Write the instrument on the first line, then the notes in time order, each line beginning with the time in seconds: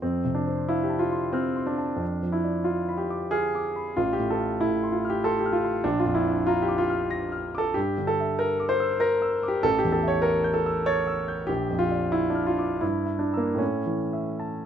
grand piano
0.02 F2 C4
0.25 C3
0.35 D4
0.47 C5
0.69 E4 F5
0.83 G4
0.90 A5
0.99 F4
1.12 C6
1.33 C4 F6
1.56 C6
1.66 D4
1.78 A5
1.96 F2
2.23 F3
2.32 E4
2.44 D5
2.64 F4 F5
2.89 B5
2.97 G4
3.10 D6
3.31 G#4 F6
3.55 D6
3.76 B5
3.97 A1 F4
4.13 G4
4.19 A2
4.30 A4
4.41 F5
4.61 A2 E4
4.83 C6
4.92 F4
5.05 F6
5.10 G4
5.24 A4 C6
5.39 G4
5.46 F6
5.53 F4
5.64 C6
5.84 A#1 D4
6.00 F4
6.05 F2
6.15 E4
6.26 F5
6.47 F4 A#5
6.62 G4
6.68 D6
6.78 F4
6.90 F6
7.11 A#6
7.32 F6
7.55 A4 D6
7.74 G2 G4
7.98 D3
8.07 A4
8.20 E5
8.39 A#4 A#5
8.60 D6
8.69 C5
8.80 E6
9.00 A#4 A#6
9.22 E6
9.43 D6
9.48 G4
9.63 A1 A4
9.78 G4
9.85 E2
9.92 A4
10.03 E5
10.08 C#5
10.22 A#4 A5
10.44 G6
10.54 A4
10.66 E6
10.86 C#5 A6
11.07 E6
11.28 G6
11.47 A#1 G4
11.70 F2
11.79 F4
11.91 D5
12.12 E4 F5
12.30 D4
12.35 F6
12.46 F4
12.59 D6
12.81 G2 E4
13.06 E5
13.19 D4
13.33 A#5 E6
13.37 A#3
13.55 A2 C#4
13.86 E3
14.13 E5
14.40 A5